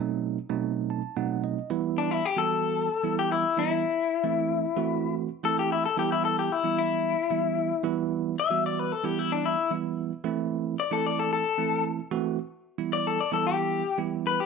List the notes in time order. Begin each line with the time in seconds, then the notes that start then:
Already playing: B2 F#3 A3 C4 D#4
0.50 B2 F#3 A3 C4 D#4
0.90 A5
1.16 B2 F#3 A3 C4 D#4 F#5
1.44 D#5
1.70 E3 G3 B3 E4
1.98 D4
2.11 E4
2.25 G4
2.36 E3 G3 B3 F#4 A4
3.03 E3 G3 B3 E4
3.19 G4
3.32 E4
3.57 E3 G3 B3 E4
4.24 E3 A3 C4 E4
4.76 E3 A3 C4 F#4
5.43 E3 A3 C4 E4 A4
5.59 G4
5.72 E4
5.86 A4
5.97 E3 G3 B3 E4 G4
6.12 E4
6.25 A4
6.39 G4
6.52 E4
6.64 E3 G3 B3 E4
6.79 E4
7.30 E3 G3 B3 E4
7.84 E3 G3 B3 E4
8.40 E5
8.50 E3 G3 B3 F#4
8.66 D5
8.79 B4
8.92 A4
9.04 E3 G3 B3 E4 G4
9.19 E4
9.32 D4
9.45 E4
9.71 E3 G3 B3 E4
10.24 E3 A3 C4 E4
10.80 D5
10.91 E3 A3 C4 E4 A4
11.06 D5
11.19 A4
11.33 A4
11.58 E3 A3 C4 E4
12.11 E3 A3 C4 F#4
12.78 E3 G3 B3 E4
12.93 D5
13.07 A4
13.20 D5
13.31 E3 G3 B3 E4 A4
13.47 G4
13.98 E3 G3 B3 E4
14.27 B4
14.40 G4